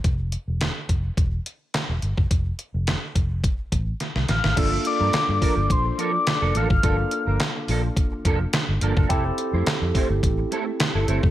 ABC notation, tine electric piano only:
X:1
M:4/4
L:1/8
Q:1/4=106
K:Gdor
V:1 name="Tine electric piano"
z8 | z8 | [B,DFA]8 | [A,B,DFA]8 |
[CEGA]8 |]